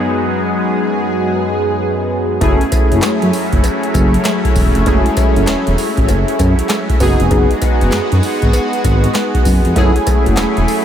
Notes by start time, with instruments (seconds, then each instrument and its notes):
Already playing: analog synth pad F#2 G#3 B3 G#4, synth keys F#3 B3 D#4 F#4 G#4
2.41 analog synth bass F#1, analog synth pad F#3 A3 C#4 E4, synth keys A3 C#4 E4 G#4, analog polysynth C#4 E4 F#4 A4, kick, closed hi-hat, cowbell
2.61 closed hi-hat
2.72 kick, closed hi-hat, tambourine, cowbell
2.91 analog synth bass F#1, analog polysynth C#4 E4 F#4 A4, closed hi-hat
3.02 analog synth bass F#2, snare, clap, closed hi-hat, tambourine, cowbell
3.22 analog synth bass F#2, closed hi-hat
3.33 open hi-hat, tambourine
3.53 analog synth bass F#1, kick, closed hi-hat
3.64 closed hi-hat, tambourine, cowbell
3.83 closed hi-hat
3.94 analog synth bass F#1, kick, closed hi-hat, tambourine, cowbell
4.14 closed hi-hat
4.24 snare, clap, closed hi-hat, tambourine, cowbell
4.45 kick, closed hi-hat
4.56 analog synth bass E1, kick, open hi-hat, tambourine
4.75 analog synth bass F1, closed hi-hat
4.86 analog synth bass F#1, synth keys G#3 C#4 E4 G#4, analog polysynth C#4 E4 F#4 A4, kick, closed hi-hat, cowbell
4.92 synth keys A3
5.06 closed hi-hat
5.17 kick, closed hi-hat, tambourine, cowbell
5.36 analog synth bass F#1, analog polysynth C#4 E4 F#4 A4, closed hi-hat
5.47 analog synth bass E1, snare, clap, closed hi-hat, tambourine, cowbell
5.67 analog synth bass E1, closed hi-hat
5.78 open hi-hat, tambourine
5.97 analog synth bass A1, kick, closed hi-hat
6.08 analog synth bass F#1, closed hi-hat, tambourine, cowbell
6.28 closed hi-hat
6.39 analog synth bass F#2, kick, closed hi-hat, tambourine, cowbell
6.59 closed hi-hat
6.69 snare, clap, closed hi-hat, tambourine, cowbell
6.89 kick, closed hi-hat
7.00 analog synth bass F#1, analog synth pad G#3 B3 F#4, analog polysynth B3 D#4 F#4 G#4, synth keys B3 D#4 F#4 G#4, kick, open hi-hat, tambourine
7.20 analog synth bass F1, closed hi-hat
7.31 analog synth bass F#1, analog polysynth B3 D#4 F#4 G#4, kick, closed hi-hat, cowbell
7.51 closed hi-hat
7.62 kick, closed hi-hat, tambourine, cowbell
7.81 analog synth bass F#1, analog polysynth B3 D#4 F#4 G#4, closed hi-hat
7.92 analog synth bass F#2, snare, clap, closed hi-hat, tambourine, cowbell
8.12 analog synth bass F#2, closed hi-hat
8.23 open hi-hat, tambourine
8.42 analog synth bass G#1, kick, closed hi-hat
8.53 closed hi-hat, tambourine, cowbell
8.73 closed hi-hat
8.84 analog synth bass G#1, kick, closed hi-hat, tambourine, cowbell
9.04 closed hi-hat
9.15 snare, clap, closed hi-hat, tambourine, cowbell
9.34 kick, closed hi-hat
9.45 analog synth bass F#1, kick, open hi-hat, tambourine
9.65 analog synth bass F1, closed hi-hat
9.76 analog synth bass F#1, analog synth pad F#3 A3 E4 G#4, synth keys A3 C#4 E4 G#4, analog polysynth A3 E4 F#4 G#4, kick, closed hi-hat, cowbell
9.96 closed hi-hat
10.07 kick, closed hi-hat, tambourine, cowbell
10.26 analog synth bass F#1, analog polysynth A3 E4 F#4 G#4, closed hi-hat
10.37 analog synth bass E1, snare, clap, closed hi-hat, tambourine, cowbell
10.57 analog synth bass E1, closed hi-hat
10.68 open hi-hat, tambourine